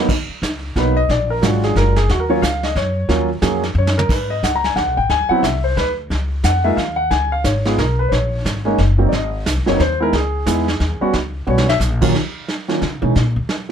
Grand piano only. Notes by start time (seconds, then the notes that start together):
0.76 F#3 A#3 B3 D#4 B4
0.97 D#5
1.11 D5
1.30 A#4
1.42 F#3 G#3 D4 F4 F#4
1.64 G#4
1.77 A#4
1.96 G#4
2.11 F#4
2.20 A#4
2.29 F#3 A#3 C#4 F4 C#5
2.42 F5
2.64 D#5
2.77 C#5
3.09 F#3 A#3 C#4 F4
3.42 F#3 A#3 C#4 G#4
3.78 C#5
3.98 A#4
4.11 B4
4.30 D#5
4.44 F#5
4.56 A#5
4.65 G#5
4.76 F#5
4.97 G5
5.10 G#5
5.29 F#3 B3 C4 E4 F#5
5.43 E5
5.64 C5
5.77 B4
6.45 F#5
6.64 G#3 A#3 D#4 F4 E5
6.77 F5
6.96 F#5
7.11 G#5
7.32 F5
7.45 C#5
7.66 G#3 B3 D#4 F4 G#4
7.79 A#4
7.99 B4
8.09 C5 C#5
8.65 G#3 A#3 C#4 D#4
8.98 F#3 A#3 C4 D#4
9.09 D5
9.14 D#5
9.66 F#3 A#3 C4 D#4 C#5
9.76 B4
9.81 C5
10.00 G#3 B3 D#4 E4 A#4
10.15 G#4
10.46 G#3 B3 D#4 E4
11.01 G3 B3 C#4 F#4
11.47 G3 B3 C#4 F#4 C#5
11.69 E5
12.02 D#2 F#3 A#3 C#4 F4
12.68 D#3 F#3 A#3 C#4 F4
13.02 E3 G#3 A#3 C#4 D#4